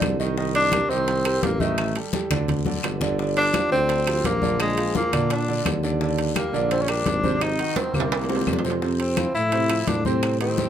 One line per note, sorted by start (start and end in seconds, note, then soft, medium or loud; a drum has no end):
0.00 0.84 C2 medium
0.00 0.14 D3 medium
0.00 0.14 D4 medium
0.00 0.14 D5 medium
0.00 high bongo soft
0.00 low bongo medium
0.00 high conga medium
0.00 high timbale medium
0.00 low timbale medium
0.00 short guiro medium
0.00 claves medium
0.19 0.34 D#3 medium
0.19 0.34 D#4 medium
0.19 0.34 D#5 medium
0.19 high bongo soft
0.19 high conga soft
0.19 short guiro medium
0.37 0.66 D#3 medium
0.37 0.67 D#4 medium
0.37 0.67 D#5 medium
0.37 high bongo medium
0.37 high conga soft
0.37 long guiro medium
0.54 0.91 D4 loud
0.54 high conga soft
0.54 high timbale medium
0.72 0.87 G3 medium
0.72 0.87 G4 medium
0.72 0.87 A#4 medium
0.72 high bongo medium
0.72 high conga loud
0.72 high timbale medium
0.72 low timbale medium
0.72 short guiro medium
0.72 claves medium
0.89 1.39 C2 medium
0.89 1.19 D#3 medium
0.89 1.44 C4 loud
0.89 1.19 D#4 medium
0.89 1.19 D#5 medium
0.89 high bongo soft
0.89 high conga soft
0.89 short guiro medium
1.07 high bongo medium
1.07 high conga soft
1.07 high timbale medium
1.07 long guiro medium
1.25 1.54 G3 medium
1.25 1.54 G4 medium
1.25 1.55 A#4 medium
1.25 high bongo soft
1.25 high conga soft
1.25 high timbale loud
1.25 claves medium
1.43 1.98 A1 medium
1.43 1.62 A#3 medium
1.43 high bongo soft
1.43 low bongo medium
1.43 high conga medium
1.43 high timbale medium
1.43 low timbale medium
1.43 short guiro medium
1.60 1.90 D#3 medium
1.60 1.96 A3 medium
1.60 1.90 D#4 medium
1.60 1.90 D#5 medium
1.60 high bongo soft
1.60 high conga medium
1.60 short guiro medium
1.78 high bongo medium
1.78 high conga soft
1.78 high timbale medium
1.78 long guiro medium
1.78 claves medium
1.95 2.10 G3 medium
1.95 2.11 G4 medium
1.95 2.11 A4 medium
1.95 high conga soft
1.95 high timbale medium
2.13 2.28 G3 medium
2.13 2.28 G4 medium
2.13 2.28 A4 medium
2.13 high bongo medium
2.13 high conga loud
2.13 low timbale medium
2.13 short guiro medium
2.30 2.80 D2 medium
2.30 2.60 D3 medium
2.30 2.60 D4 medium
2.30 2.60 D5 medium
2.30 high bongo loud
2.30 low conga medium
2.30 high timbale loud
2.30 short guiro medium
2.30 claves medium
2.48 low bongo medium
2.48 high conga soft
2.48 low conga medium
2.48 high timbale medium
2.48 long guiro medium
2.65 2.95 D3 medium
2.65 2.96 D4 medium
2.65 2.96 D5 medium
2.65 low bongo medium
2.65 high conga medium
2.83 3.66 G1 loud
2.83 low bongo loud
2.83 high timbale medium
2.83 low timbale medium
2.83 short guiro medium
2.83 claves medium
3.01 3.16 D3 medium
3.01 3.16 D4 medium
3.01 3.16 D5 medium
3.01 low bongo loud
3.01 low conga medium
3.01 short guiro medium
3.18 3.48 D3 medium
3.18 3.48 D4 medium
3.18 3.49 D5 medium
3.18 high bongo medium
3.18 high conga soft
3.18 long guiro medium
3.36 3.69 D4 loud
3.36 high conga soft
3.36 high timbale medium
3.54 3.69 F3 medium
3.54 3.69 F4 medium
3.54 3.69 G4 medium
3.54 high bongo medium
3.54 high conga loud
3.54 high timbale medium
3.54 low timbale medium
3.54 short guiro medium
3.54 claves medium
3.72 4.21 D2 loud
3.72 4.01 D3 medium
3.72 4.27 C4 loud
3.72 4.01 D4 medium
3.72 4.01 D5 medium
3.72 high bongo soft
3.72 high conga soft
3.72 short guiro medium
3.89 high bongo medium
3.89 high conga soft
3.89 high timbale medium
3.89 long guiro medium
4.07 4.36 F3 medium
4.07 4.36 F4 medium
4.07 4.37 G4 medium
4.07 high bongo soft
4.07 high conga soft
4.07 high timbale loud
4.07 claves medium
4.24 5.07 A#1 loud
4.24 4.60 A#3 loud
4.24 high bongo soft
4.24 low bongo medium
4.24 high conga medium
4.24 high timbale medium
4.24 low timbale medium
4.24 short guiro medium
4.42 4.71 D3 medium
4.42 4.71 D4 medium
4.42 4.71 D5 medium
4.42 high bongo soft
4.42 high conga medium
4.42 short guiro medium
4.60 4.93 G#3 medium
4.60 high bongo medium
4.60 high timbale medium
4.60 long guiro medium
4.60 claves medium
4.77 4.92 F3 medium
4.77 4.92 F4 medium
4.77 4.92 G#4 medium
4.77 high conga soft
4.77 high timbale medium
4.95 5.09 F3 medium
4.95 5.29 A#3 medium
4.95 5.10 F4 medium
4.95 5.10 G#4 medium
4.95 high bongo medium
4.95 high conga loud
4.95 low timbale medium
4.95 short guiro medium
5.12 5.62 A#2 medium
5.12 5.42 D3 medium
5.12 5.42 D4 medium
5.12 5.42 D5 medium
5.12 high bongo soft
5.12 low conga medium
5.12 high timbale loud
5.12 short guiro medium
5.12 claves medium
5.30 5.64 D4 medium
5.30 high bongo medium
5.30 high conga soft
5.30 high timbale medium
5.30 long guiro medium
5.48 5.77 D3 medium
5.48 5.77 D4 medium
5.48 5.77 D5 medium
5.48 high bongo soft
5.48 high conga soft
5.65 6.48 D#2 loud
5.65 high bongo soft
5.65 low bongo medium
5.65 high conga medium
5.65 high timbale medium
5.65 low timbale medium
5.65 short guiro medium
5.65 claves medium
5.83 5.98 D3 medium
5.83 5.98 D4 medium
5.83 5.98 D5 medium
5.83 high bongo soft
5.83 high conga soft
5.83 short guiro medium
6.00 6.30 D3 medium
6.00 6.30 D4 medium
6.00 6.30 D5 medium
6.00 high bongo medium
6.00 high conga soft
6.00 long guiro medium
6.18 high conga soft
6.18 high timbale medium
6.36 6.50 G3 medium
6.36 6.69 A#3 medium
6.36 6.51 G4 medium
6.36 6.51 A#4 medium
6.36 high bongo medium
6.36 high conga loud
6.36 high timbale medium
6.36 low timbale medium
6.36 short guiro medium
6.36 claves medium
6.53 7.02 A#1 medium
6.53 6.82 D3 medium
6.53 6.83 D4 medium
6.53 6.83 D5 medium
6.53 high bongo soft
6.53 high conga soft
6.53 short guiro medium
6.71 6.83 C4 medium
6.71 high bongo medium
6.71 high conga soft
6.71 high timbale medium
6.71 long guiro medium
6.82 6.91 C#4 medium
6.88 7.18 G3 medium
6.88 7.43 D4 loud
6.88 7.18 G4 medium
6.88 7.18 A#4 medium
6.88 high bongo soft
6.88 high conga soft
6.88 high timbale medium
6.88 claves medium
7.06 7.61 G#1 loud
7.06 high bongo soft
7.06 low bongo medium
7.06 high conga medium
7.06 high timbale medium
7.06 low timbale medium
7.06 short guiro medium
7.24 7.53 C3 medium
7.24 7.53 C4 medium
7.24 7.53 C5 medium
7.24 high bongo soft
7.24 high conga medium
7.24 short guiro medium
7.41 7.78 D#4 loud
7.41 high bongo medium
7.41 high conga soft
7.41 high timbale medium
7.41 long guiro medium
7.41 claves medium
7.59 7.74 D#3 medium
7.59 7.74 D#4 medium
7.59 7.74 F#4 medium
7.59 high conga soft
7.59 high timbale medium
7.76 7.91 D#3 medium
7.76 7.96 C4 medium
7.76 7.92 D#4 medium
7.76 7.92 F#4 medium
7.76 high bongo medium
7.76 high conga loud
7.76 high timbale loud
7.76 short guiro medium
7.94 8.43 C2 medium
7.94 8.23 C3 medium
7.94 8.65 A#3 medium
7.94 8.23 C4 medium
7.94 8.23 C5 medium
7.94 high bongo soft
7.94 low conga medium
7.94 short guiro medium
7.94 claves medium
8.00 high timbale medium
8.12 high bongo medium
8.12 high conga soft
8.12 high timbale loud
8.12 long guiro medium
8.24 low timbale medium
8.29 8.58 C3 medium
8.29 8.58 C4 medium
8.29 8.58 C5 medium
8.29 high bongo loud
8.29 high conga soft
8.36 low timbale medium
8.41 high bongo medium
8.47 9.29 F2 medium
8.47 high conga medium
8.47 low timbale medium
8.47 short guiro medium
8.47 claves medium
8.53 low bongo loud
8.59 low timbale loud
8.64 8.79 C3 medium
8.64 8.79 C4 medium
8.64 8.79 C5 medium
8.64 low bongo medium
8.64 high conga soft
8.64 short guiro medium
8.70 low timbale medium
8.82 9.11 C3 medium
8.82 9.11 C4 medium
8.82 9.11 C5 medium
8.82 high bongo medium
8.82 high conga soft
8.82 long guiro medium
9.00 9.33 C4 medium
9.00 high conga soft
9.00 high timbale medium
9.17 9.46 F3 medium
9.17 9.46 E4 medium
9.17 9.47 F4 medium
9.17 high bongo medium
9.17 high conga loud
9.17 high timbale medium
9.17 low timbale medium
9.17 short guiro medium
9.17 claves medium
9.35 9.84 A2 medium
9.35 9.89 E4 loud
9.35 high bongo soft
9.35 high conga soft
9.35 short guiro medium
9.52 9.67 C3 medium
9.52 9.67 C4 medium
9.52 9.68 C5 medium
9.52 high bongo medium
9.52 high conga soft
9.52 high timbale medium
9.52 long guiro medium
9.69 9.99 F3 medium
9.69 9.99 E4 medium
9.69 9.99 F4 medium
9.69 high conga soft
9.69 high timbale medium
9.69 claves medium
9.87 10.69 A2 medium
9.87 10.05 D4 medium
9.87 high bongo soft
9.87 low bongo medium
9.87 high conga medium
9.87 high timbale medium
9.87 low timbale medium
9.87 short guiro medium
10.05 10.34 C3 medium
10.05 10.40 C4 medium
10.05 10.34 C4 medium
10.05 10.35 C5 medium
10.05 high bongo soft
10.05 high conga medium
10.05 short guiro medium
10.23 high bongo medium
10.23 high conga soft
10.23 high timbale medium
10.23 long guiro medium
10.23 claves medium
10.40 10.69 D#3 medium
10.40 10.69 C4 medium
10.40 10.69 D#4 medium
10.40 10.69 G4 medium
10.40 high conga soft
10.40 high timbale medium
10.58 high bongo medium
10.58 high conga loud
10.58 low timbale medium
10.58 short guiro medium